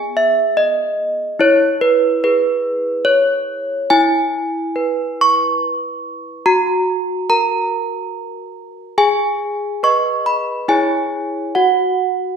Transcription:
Already playing: B3 G#4 G#5
0.17 E5
0.57 D#5
1.39 E4 C#5
1.81 B4
2.24 G#4 B4
3.05 C#5
3.90 E4 G#5
4.76 B4
5.21 C#6
6.46 F#4 A#5
7.30 A#4 A#5
8.98 G#4 G#5
9.83 B4 D#5 C#6
10.26 B5
10.68 E4 G#4 C#5 G#5
11.55 F#4 F#5

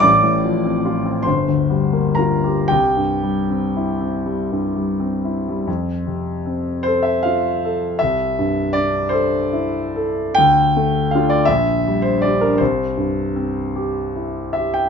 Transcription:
0.00 A1 D5 D6
0.23 A2
0.45 F3
0.65 C4
0.85 F4
1.05 C4
1.23 C5 C6
1.27 G1
1.48 D2
1.70 G3
1.93 A#3
2.15 F4 A#4 A#5
2.44 G4
2.68 C2 G4 G5
2.97 G2
3.23 G3
3.50 C4
3.76 E4
4.01 C4
4.26 G3
4.52 G2
4.76 G3
5.00 C4
5.25 E4
5.49 G3
5.67 F2
6.06 C3
6.46 C4
6.83 A4 C5
7.03 E5
7.23 F4 F5
7.65 A4
7.99 C2 E5
8.39 G2
8.73 D4 D5
9.09 A4 C5
9.53 E4
9.96 A4
10.35 D2 G5
10.77 A3
11.11 D4 F5
11.15 F4
11.29 D5
11.45 A#1 E5
11.87 G3
12.02 C5
12.22 D4 G4 D5
12.41 A#4
12.58 C2 C5
12.97 G2
13.36 C4
13.76 G4
14.15 E4
14.53 G4 E5
14.74 G5

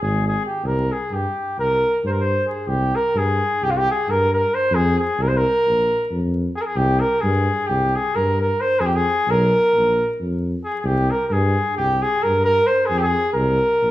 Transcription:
0.01 G#1 G#4
0.28 G#4
0.46 G4
0.63 C2 A#4
0.92 G#4
1.11 G2 G4
1.58 C2 A#4
2.04 G2 C5
2.09 A#4
2.19 C5
2.47 G#4
2.67 C2 G4
2.95 A#4
3.15 G2 G#4
3.62 C2 G4
3.70 F4
3.77 G4
3.91 G#4
4.08 G2 A#4
4.33 A#4
4.54 C5
4.71 F2 G#4
4.99 G#4
5.18 C2 A#4
5.28 C5
5.37 A#4
5.66 A#1
6.11 F2
6.56 G#4
6.61 A#4
6.65 G#4
6.75 C2 G4
7.00 A#4
7.21 G2 G#4
7.67 C2 G4
7.95 G#4
8.15 G2 A#4
8.41 A#4
8.61 C5
8.80 F2 G#4
8.86 G4
8.96 G#4
9.27 B1 A#4
9.74 A#1
10.20 F2
10.64 G#4
10.80 C2 G#4
10.86 G4
11.10 A#4
11.27 G2 A#4
11.32 G#4
11.77 C2 G4
12.02 G#4
12.23 G2 A#4
12.45 A#4
12.66 C5
12.86 F2 G#4
12.98 G4 G#4
13.34 C2 A#4
13.82 A#1

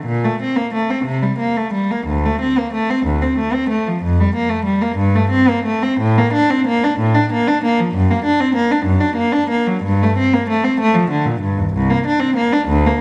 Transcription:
0.06 A#2
0.24 A3
0.42 C4
0.56 A#3
0.74 A3
0.90 C4
1.05 C3
1.22 G3
1.39 A#3
1.57 A3
1.74 G3
1.91 A#3
2.07 D2
2.25 A3
2.41 C4
2.58 A#3
2.73 A3
2.90 C4
3.06 D2
3.22 C4
3.38 A3
3.54 C4
3.70 A3
3.87 F3
4.03 F2
4.20 G3
4.36 A#3
4.50 A3
4.65 G3
4.82 A#3
4.98 G2
5.15 A3
5.31 C4
5.48 A#3
5.65 A3
5.83 C4
6.00 A2
6.18 A#3
6.33 D4
6.50 C4
6.67 A#3
6.84 D4
6.99 A2
7.14 D4
7.32 A#3
7.48 D4
7.64 A#3
7.80 F3
7.94 F#2
8.11 A#3
8.25 D4
8.40 C4
8.56 A#3
8.71 D4
8.85 F#2
9.00 D4
9.16 A#3
9.32 D4
9.50 A#3
9.67 F#3
9.84 G2
10.03 A3
10.18 C4
10.33 A#3
10.50 A3
10.64 C4
10.80 A3
10.94 F3
11.10 D3
11.26 A#2
11.41 G2
11.57 D#2
11.73 C2
11.90 A#3
12.06 D4
12.19 C4
12.36 A#3
12.52 D4
12.68 D2
12.86 A#3

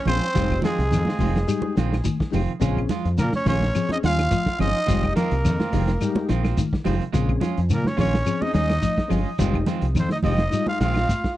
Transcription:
0.06 A#1 F3 G#3 C4 C#4 F4 G#4 C5, open hi-hat, low conga, claves, shekere
0.23 snare
0.34 F1 D#3 G3 G#3 C4 D#4 F4 G4, kick, closed hi-hat, shekere
0.51 kick, claves
0.62 D#3 F3 G#3 C4 F4 G#4, snare, closed hi-hat, high conga, low conga, shekere
0.79 C2, snare, closed hi-hat
0.91 F2 D#3, closed hi-hat, high conga, low conga, claves, shekere
1.05 C4 F4, snare, high conga
1.19 F1 C3 D#3 G#3 C4 D#4 F4 G4, kick, open hi-hat, high conga, low conga, shekere
1.33 snare, closed hi-hat, high conga
1.47 G3 G#3 D#4 G4, closed hi-hat, high conga, claves, shekere
1.62 high conga
1.77 A#1 D#3 F3 G#3 C4 F4, snare, closed hi-hat, shekere
1.93 snare, claves
2.04 D#3, kick, closed hi-hat, high conga, shekere
2.20 kick, snare
2.31 F1 C3 D#3 G#3 C4 D#4 G4, muted clean electric guitar stroke, open hi-hat, low conga, shekere
2.35 F4, claves
2.48 closed hi-hat
2.60 A#1 C#3 G#3 C4 C#4 F4 G#4, kick, closed hi-hat, high conga, shekere
2.77 kick, claves
2.89 F3 G#3 F4, snare, closed hi-hat, high conga, low conga, shekere
3.05 F2, snare, closed hi-hat
3.18 A#2 C#3 A#3 A#4, snare, closed hi-hat, high conga, low conga, claves, shekere
3.33 C#4 C#5, snare, high conga
3.46 A#1 D#3 G#3 C4 C#4 F4 G#4 C#5, kick, open hi-hat, high conga, low conga, shekere
3.61 snare, high conga
3.74 F3 C4 C#4 G#4, closed hi-hat, high conga, claves, shekere
3.89 D#4 D#5, high conga
4.03 D#2 G3 G#3 C#4 F4 F5, snare, closed hi-hat, shekere
4.18 snare, closed hi-hat, claves
4.31 F3, kick, closed hi-hat, high conga, shekere
4.46 kick, snare
4.59 G1 F3 G#3 C4 C#4 D#4 F4 G#4 D#5, open hi-hat, low conga, claves, shekere
4.76 snare
4.86 F1 D#3 G3 G#3 C4 D#4 F4 G4, kick, closed hi-hat, high conga, shekere
5.03 kick, claves
5.15 D#3 F3 G#3 A#3 C4 F4 A#4, snare, closed hi-hat, high conga, low conga, shekere
5.31 C2, closed hi-hat
5.45 F2 D#3, snare, closed hi-hat, high conga, low conga, claves, shekere
5.59 G#3 C4 F4, snare, high conga
5.72 F1 C3 D#3 G#3 C4 D#4 F4 G4, kick, open hi-hat, low conga, shekere
5.87 snare, closed hi-hat, high conga
6.00 G3 G#3 D#4 G4, closed hi-hat, high conga, claves, shekere
6.16 snare, high conga
6.29 A#1 D#3 F3 G#3 C4 F4, snare, closed hi-hat, shekere
6.43 G#3 C4 F4, snare, claves
6.57 D#3, kick, snare, closed hi-hat, high conga, shekere
6.73 kick, snare
6.84 F1 C3 D#3 G#3 C4 D#4 F4 G4, open hi-hat, low conga, claves, shekere
7.02 closed hi-hat
7.13 A#1 C#3 G#3 C4 C#4 F4 G#4, muted clean electric guitar stroke, kick, closed hi-hat, high conga, shekere
7.29 kick, claves
7.40 F3 G#3 C#4 F4, snare, closed hi-hat, high conga, low conga, shekere
7.57 F2, snare, closed hi-hat
7.70 A#2 C#3, closed hi-hat, high conga, low conga, claves, shekere
7.74 A#3 A#4
7.84 C#5, snare, high conga
7.89 C#4
7.97 A#1 D#3 G#3 C4 C#4 F4 G#4 C#5, kick, open hi-hat, high conga, low conga, shekere
8.02 C#4
8.14 snare
8.25 F3 C4 C#4 G#4, closed hi-hat, high conga, claves, shekere
8.41 D#4 D#5, high conga
8.53 D#2 G3 G#3 C#4 D#4 D#5, snare, closed hi-hat, shekere
8.69 snare, closed hi-hat, claves
8.82 F3, kick, closed hi-hat, high conga, shekere
8.98 kick, snare
9.08 G1 F3 G#3 C4 C#4 F4 G#4, open hi-hat, low conga, claves, shekere
9.38 F1 D#3 G3 G#3 C4 D#4 F4 G4, kick, closed hi-hat, high conga, shekere
9.54 kick, claves
9.66 D#3 F3 G#3 C4 F4, snare, closed hi-hat, high conga, low conga, shekere
9.82 C2, snare, closed hi-hat
9.95 F2 D#3, closed hi-hat, high conga, low conga, claves, shekere
9.99 C4 C5
10.09 D#5, snare, high conga
10.15 D#4
10.23 F1 C3 D#3 G#3 C4 D#4 F4 G4 D#5, kick, open hi-hat, high conga, low conga, shekere
10.27 D#4
10.38 snare, closed hi-hat, high conga
10.50 G3 G#3 D#4 F4, closed hi-hat, high conga, claves, shekere
10.67 F4 F5, high conga
10.80 A#1 D#3 F3 G#3 C4 F4 F5, snare, closed hi-hat, shekere
10.94 G#3 C4 F4, snare, claves
11.09 kick, closed hi-hat, high conga, shekere
11.24 kick, snare

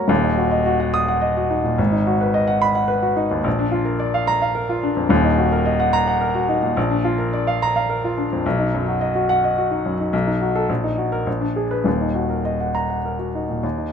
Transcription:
Already playing: F#2 G#3 A#3 F#4 C#5 F#5 A#5
0.08 D#1 D#2
0.23 D#4
0.38 F#4
0.51 D#5
0.66 F#4
0.80 F#5
0.94 D#6
1.08 F#5
1.21 D#5
1.37 F#4
1.50 D#4
1.64 A#2
1.78 G#1
1.92 D#4
2.07 F#4
2.21 B4
2.34 D#5
2.47 F#5
2.62 B5
2.75 F#5
2.88 B4
3.02 F#4
3.16 D#4
3.31 D#2
3.44 A#1
3.59 D4
3.72 F4
3.85 A#4
4.00 D5
4.14 F5
4.27 A#5
4.42 F5
4.55 A#4
4.69 F4
4.83 D4
4.97 F2
5.09 D#1 D#2
5.24 D#4
5.38 F#4
5.52 A#4
5.66 D#5
5.80 F#5
5.93 A#5
6.08 F#5
6.21 A#4
6.35 F#4
6.49 D#4
6.63 A#2
6.77 A#1
6.91 D4
7.04 F4
7.18 A#4
7.33 D5
7.47 F5
7.62 A#5
7.76 F5
7.89 A#4
8.04 F4
8.17 D4
8.33 F2
8.46 B1
8.59 D#4
8.74 F#2
8.88 F#4
9.01 D#5
9.15 F#4
9.29 F#5
9.44 D#5
9.58 F#4
9.71 D#4
9.86 F#2
10.00 D#4
10.13 B1
10.27 D#4
10.41 F#4
10.55 A4
10.69 A#1
10.84 D#4
10.98 F#4
11.12 A#4
11.27 A#1
11.41 D4
11.56 G#4
11.71 B4
11.84 D#1 D#2
12.01 D#4
12.15 F#4
12.30 A#4
12.45 D#5
12.60 F#5
12.75 A#5
12.90 F#5
13.05 A#4
13.19 F#4
13.35 D#4
13.49 A#2
13.63 D#2
13.78 D#4

